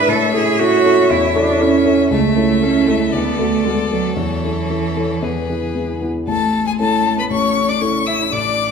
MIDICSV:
0, 0, Header, 1, 5, 480
1, 0, Start_track
1, 0, Key_signature, 3, "major"
1, 0, Tempo, 508044
1, 81, Time_signature, 4, 2, 24, 8
1, 3441, Tempo, 529101
1, 5841, Tempo, 507614
1, 8135, End_track
2, 0, Start_track
2, 0, Title_t, "Violin"
2, 0, Program_c, 0, 40
2, 0, Note_on_c, 0, 76, 73
2, 1954, Note_off_c, 0, 76, 0
2, 1999, Note_on_c, 0, 76, 73
2, 2950, Note_on_c, 0, 74, 62
2, 2964, Note_off_c, 0, 76, 0
2, 3911, Note_off_c, 0, 74, 0
2, 3917, Note_on_c, 0, 73, 53
2, 4882, Note_on_c, 0, 71, 50
2, 4896, Note_off_c, 0, 73, 0
2, 5652, Note_off_c, 0, 71, 0
2, 5841, Note_on_c, 0, 81, 81
2, 6179, Note_off_c, 0, 81, 0
2, 6201, Note_on_c, 0, 80, 71
2, 6250, Note_off_c, 0, 80, 0
2, 6323, Note_on_c, 0, 81, 87
2, 6677, Note_off_c, 0, 81, 0
2, 6700, Note_on_c, 0, 83, 73
2, 6745, Note_off_c, 0, 83, 0
2, 6812, Note_on_c, 0, 85, 82
2, 7169, Note_on_c, 0, 86, 79
2, 7183, Note_off_c, 0, 85, 0
2, 7277, Note_on_c, 0, 85, 84
2, 7291, Note_off_c, 0, 86, 0
2, 7519, Note_on_c, 0, 88, 82
2, 7533, Note_off_c, 0, 85, 0
2, 7760, Note_on_c, 0, 86, 85
2, 7774, Note_off_c, 0, 88, 0
2, 8135, Note_off_c, 0, 86, 0
2, 8135, End_track
3, 0, Start_track
3, 0, Title_t, "Violin"
3, 0, Program_c, 1, 40
3, 78, Note_on_c, 1, 73, 73
3, 1955, Note_off_c, 1, 73, 0
3, 1995, Note_on_c, 1, 69, 71
3, 4884, Note_on_c, 1, 68, 54
3, 4898, Note_off_c, 1, 69, 0
3, 5653, Note_off_c, 1, 68, 0
3, 5838, Note_on_c, 1, 69, 66
3, 6202, Note_on_c, 1, 68, 59
3, 6216, Note_off_c, 1, 69, 0
3, 6319, Note_off_c, 1, 68, 0
3, 6324, Note_on_c, 1, 69, 68
3, 6677, Note_off_c, 1, 69, 0
3, 6689, Note_on_c, 1, 71, 61
3, 6736, Note_off_c, 1, 71, 0
3, 6800, Note_on_c, 1, 73, 74
3, 7163, Note_on_c, 1, 74, 64
3, 7178, Note_off_c, 1, 73, 0
3, 7272, Note_off_c, 1, 74, 0
3, 7278, Note_on_c, 1, 73, 68
3, 7353, Note_off_c, 1, 73, 0
3, 7518, Note_on_c, 1, 76, 69
3, 7594, Note_off_c, 1, 76, 0
3, 7765, Note_on_c, 1, 74, 72
3, 8135, Note_off_c, 1, 74, 0
3, 8135, End_track
4, 0, Start_track
4, 0, Title_t, "Grand piano"
4, 0, Program_c, 2, 0
4, 0, Control_c, 2, 64, 127
4, 0, Note_on_c, 2, 44, 64
4, 0, Note_on_c, 2, 62, 50
4, 0, Note_on_c, 2, 64, 51
4, 0, Note_on_c, 2, 71, 57
4, 70, Note_on_c, 2, 45, 68
4, 100, Control_c, 2, 64, 0
4, 101, Note_off_c, 2, 62, 0
4, 103, Note_off_c, 2, 64, 0
4, 106, Note_off_c, 2, 71, 0
4, 107, Note_off_c, 2, 44, 0
4, 262, Control_c, 2, 64, 127
4, 309, Note_off_c, 2, 45, 0
4, 317, Note_on_c, 2, 61, 54
4, 319, Note_on_c, 2, 64, 54
4, 324, Note_on_c, 2, 69, 60
4, 536, Note_off_c, 2, 61, 0
4, 537, Note_off_c, 2, 64, 0
4, 540, Note_off_c, 2, 69, 0
4, 559, Note_on_c, 2, 61, 54
4, 562, Note_on_c, 2, 64, 55
4, 567, Note_on_c, 2, 69, 60
4, 776, Note_off_c, 2, 61, 0
4, 778, Note_off_c, 2, 64, 0
4, 781, Note_off_c, 2, 69, 0
4, 798, Note_on_c, 2, 61, 56
4, 801, Note_on_c, 2, 64, 58
4, 806, Note_on_c, 2, 69, 62
4, 1015, Note_off_c, 2, 61, 0
4, 1017, Note_off_c, 2, 64, 0
4, 1020, Note_off_c, 2, 69, 0
4, 1041, Note_on_c, 2, 40, 68
4, 1273, Note_off_c, 2, 40, 0
4, 1274, Note_on_c, 2, 61, 55
4, 1280, Note_on_c, 2, 64, 62
4, 1283, Note_on_c, 2, 69, 66
4, 1490, Note_off_c, 2, 61, 0
4, 1494, Note_off_c, 2, 64, 0
4, 1495, Note_off_c, 2, 69, 0
4, 1511, Note_on_c, 2, 61, 55
4, 1515, Note_on_c, 2, 64, 58
4, 1519, Note_on_c, 2, 69, 67
4, 1728, Note_off_c, 2, 61, 0
4, 1730, Note_off_c, 2, 64, 0
4, 1732, Note_off_c, 2, 69, 0
4, 1749, Note_on_c, 2, 61, 52
4, 1753, Note_on_c, 2, 64, 53
4, 1756, Note_on_c, 2, 69, 61
4, 1967, Note_off_c, 2, 61, 0
4, 1969, Note_off_c, 2, 64, 0
4, 1971, Note_off_c, 2, 69, 0
4, 1990, Note_on_c, 2, 37, 74
4, 2012, Control_c, 2, 64, 0
4, 2161, Control_c, 2, 64, 127
4, 2225, Note_off_c, 2, 37, 0
4, 2230, Note_on_c, 2, 61, 54
4, 2233, Note_on_c, 2, 64, 52
4, 2238, Note_on_c, 2, 69, 55
4, 2449, Note_off_c, 2, 61, 0
4, 2450, Note_off_c, 2, 64, 0
4, 2453, Note_off_c, 2, 69, 0
4, 2469, Note_on_c, 2, 61, 51
4, 2473, Note_on_c, 2, 64, 51
4, 2478, Note_on_c, 2, 69, 55
4, 2687, Note_off_c, 2, 61, 0
4, 2690, Note_off_c, 2, 64, 0
4, 2692, Note_off_c, 2, 69, 0
4, 2715, Note_on_c, 2, 61, 50
4, 2720, Note_on_c, 2, 64, 50
4, 2723, Note_on_c, 2, 69, 55
4, 2931, Note_off_c, 2, 61, 0
4, 2933, Note_off_c, 2, 64, 0
4, 2935, Note_off_c, 2, 69, 0
4, 2953, Note_on_c, 2, 38, 66
4, 2974, Control_c, 2, 64, 0
4, 3110, Control_c, 2, 64, 127
4, 3187, Note_off_c, 2, 38, 0
4, 3196, Note_on_c, 2, 59, 48
4, 3199, Note_on_c, 2, 66, 49
4, 3202, Note_on_c, 2, 69, 57
4, 3415, Note_off_c, 2, 59, 0
4, 3417, Note_off_c, 2, 66, 0
4, 3419, Note_off_c, 2, 69, 0
4, 3438, Note_on_c, 2, 59, 49
4, 3442, Note_on_c, 2, 66, 50
4, 3445, Note_on_c, 2, 69, 55
4, 3651, Note_off_c, 2, 59, 0
4, 3654, Note_off_c, 2, 66, 0
4, 3656, Note_off_c, 2, 69, 0
4, 3676, Note_on_c, 2, 59, 43
4, 3680, Note_on_c, 2, 66, 41
4, 3685, Note_on_c, 2, 69, 45
4, 3892, Note_off_c, 2, 59, 0
4, 3894, Note_off_c, 2, 66, 0
4, 3897, Note_off_c, 2, 69, 0
4, 3913, Note_on_c, 2, 40, 58
4, 3934, Control_c, 2, 64, 0
4, 4076, Control_c, 2, 64, 127
4, 4149, Note_off_c, 2, 40, 0
4, 4160, Note_on_c, 2, 61, 41
4, 4166, Note_on_c, 2, 64, 42
4, 4169, Note_on_c, 2, 69, 45
4, 4377, Note_off_c, 2, 61, 0
4, 4380, Note_off_c, 2, 64, 0
4, 4382, Note_off_c, 2, 69, 0
4, 4396, Note_on_c, 2, 61, 39
4, 4400, Note_on_c, 2, 64, 40
4, 4405, Note_on_c, 2, 69, 43
4, 4616, Note_off_c, 2, 61, 0
4, 4619, Note_off_c, 2, 64, 0
4, 4621, Note_off_c, 2, 69, 0
4, 4636, Note_on_c, 2, 61, 38
4, 4637, Note_on_c, 2, 64, 41
4, 4642, Note_on_c, 2, 69, 44
4, 4857, Note_off_c, 2, 61, 0
4, 4858, Note_off_c, 2, 64, 0
4, 4861, Note_off_c, 2, 69, 0
4, 4876, Note_on_c, 2, 40, 56
4, 4904, Control_c, 2, 64, 0
4, 5034, Control_c, 2, 64, 127
4, 5113, Note_off_c, 2, 40, 0
4, 5116, Note_on_c, 2, 59, 41
4, 5122, Note_on_c, 2, 64, 42
4, 5122, Note_on_c, 2, 68, 46
4, 5334, Note_off_c, 2, 59, 0
4, 5337, Note_off_c, 2, 64, 0
4, 5338, Note_off_c, 2, 68, 0
4, 5357, Note_on_c, 2, 59, 42
4, 5357, Note_on_c, 2, 64, 41
4, 5363, Note_on_c, 2, 68, 43
4, 5575, Note_off_c, 2, 59, 0
4, 5575, Note_off_c, 2, 64, 0
4, 5578, Note_off_c, 2, 68, 0
4, 5593, Note_on_c, 2, 59, 38
4, 5597, Note_on_c, 2, 64, 38
4, 5599, Note_on_c, 2, 68, 39
4, 5811, Note_off_c, 2, 59, 0
4, 5814, Note_off_c, 2, 64, 0
4, 5815, Note_off_c, 2, 68, 0
4, 5830, Note_on_c, 2, 33, 47
4, 5830, Note_on_c, 2, 45, 56
4, 5856, Control_c, 2, 64, 0
4, 6001, Control_c, 2, 64, 127
4, 6319, Note_on_c, 2, 61, 45
4, 6323, Note_on_c, 2, 64, 45
4, 6326, Note_on_c, 2, 69, 47
4, 6764, Note_off_c, 2, 61, 0
4, 6766, Note_off_c, 2, 64, 0
4, 6767, Note_off_c, 2, 69, 0
4, 6770, Note_off_c, 2, 33, 0
4, 6771, Note_off_c, 2, 45, 0
4, 6802, Note_on_c, 2, 33, 54
4, 6802, Note_on_c, 2, 45, 49
4, 7280, Note_on_c, 2, 61, 47
4, 7281, Note_on_c, 2, 64, 45
4, 7287, Note_on_c, 2, 69, 49
4, 7724, Note_off_c, 2, 61, 0
4, 7724, Note_off_c, 2, 64, 0
4, 7727, Note_off_c, 2, 69, 0
4, 7734, Note_off_c, 2, 33, 0
4, 7734, Note_off_c, 2, 45, 0
4, 7758, Note_on_c, 2, 45, 54
4, 7759, Note_on_c, 2, 33, 49
4, 7783, Control_c, 2, 64, 0
4, 7937, Control_c, 2, 64, 127
4, 8135, Note_off_c, 2, 33, 0
4, 8135, Note_off_c, 2, 45, 0
4, 8135, End_track
5, 0, Start_track
5, 0, Title_t, "Cello"
5, 0, Program_c, 3, 42
5, 0, Note_on_c, 3, 71, 113
5, 83, Note_on_c, 3, 69, 108
5, 97, Note_off_c, 3, 71, 0
5, 311, Note_off_c, 3, 69, 0
5, 316, Note_on_c, 3, 68, 106
5, 561, Note_on_c, 3, 66, 119
5, 575, Note_off_c, 3, 68, 0
5, 1048, Note_on_c, 3, 64, 92
5, 1062, Note_off_c, 3, 66, 0
5, 1288, Note_on_c, 3, 62, 105
5, 1302, Note_off_c, 3, 64, 0
5, 1524, Note_on_c, 3, 61, 108
5, 1538, Note_off_c, 3, 62, 0
5, 1997, Note_off_c, 3, 61, 0
5, 2005, Note_on_c, 3, 57, 102
5, 2485, Note_on_c, 3, 61, 102
5, 2499, Note_off_c, 3, 57, 0
5, 2713, Note_on_c, 3, 57, 89
5, 2727, Note_off_c, 3, 61, 0
5, 2945, Note_off_c, 3, 57, 0
5, 2951, Note_on_c, 3, 59, 87
5, 3190, Note_on_c, 3, 57, 89
5, 3204, Note_off_c, 3, 59, 0
5, 3441, Note_on_c, 3, 56, 79
5, 3455, Note_off_c, 3, 57, 0
5, 3677, Note_off_c, 3, 56, 0
5, 3688, Note_on_c, 3, 54, 82
5, 3933, Note_on_c, 3, 52, 83
5, 3947, Note_off_c, 3, 54, 0
5, 5611, Note_off_c, 3, 52, 0
5, 5834, Note_on_c, 3, 57, 70
5, 6176, Note_off_c, 3, 57, 0
5, 6200, Note_on_c, 3, 56, 65
5, 6316, Note_on_c, 3, 57, 77
5, 6330, Note_off_c, 3, 56, 0
5, 6677, Note_on_c, 3, 59, 66
5, 6692, Note_off_c, 3, 57, 0
5, 6791, Note_on_c, 3, 61, 74
5, 6806, Note_off_c, 3, 59, 0
5, 7160, Note_on_c, 3, 62, 68
5, 7175, Note_off_c, 3, 61, 0
5, 7287, Note_on_c, 3, 61, 74
5, 7301, Note_off_c, 3, 62, 0
5, 7511, Note_off_c, 3, 61, 0
5, 7516, Note_on_c, 3, 64, 78
5, 7755, Note_off_c, 3, 64, 0
5, 7767, Note_on_c, 3, 62, 70
5, 8135, Note_off_c, 3, 62, 0
5, 8135, End_track
0, 0, End_of_file